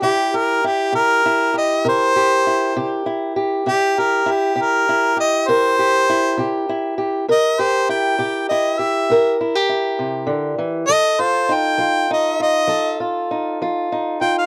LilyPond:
<<
  \new Staff \with { instrumentName = "Harmonica" } { \time 12/8 \key c \mixolydian \tempo 4. = 66 g'8 bes'8 g'8 bes'4 ees''8 c''2 r4 | g'8 bes'8 g'8 bes'4 ees''8 c''2 r4 | ees''8 c''8 g''4 ees''8 e''4 r2 r8 | ees''8 c''8 g''4 ees''8 ees''4 r2 g''16 f''16 | }
  \new Staff \with { instrumentName = "Steel-string acoustic guitar" } { \time 12/8 \key c \mixolydian << { e'8 g'8 e'8 g'8 e'8 g'8 bes'8 g'8 e'8 g'8 e'8 g'8 | e'8 g'8 e'8 g'8 e'8 g'8 bes'8 g'8 e'8 g'8 e'8 g'8 | bes'8 g'8 e'8 g'8 e'8 g'8 bes'8 e'16 g'16 e'2 | a'8 f'8 ees'8 f'8 ees'8 f'8 a'8 f'8 ees'8 f'8 ees'8 f'8 | } \\ { c4 r8 c4 r8 c4 r8 c4 r8 | c4 r8 c4 r8 c4 r8 c4 r8 | c4 r8 c4 r8 c4 r8 c8 d8 e8 | f4 r8 f4 r8 f4 r8 f4 r8 | } >> }
>>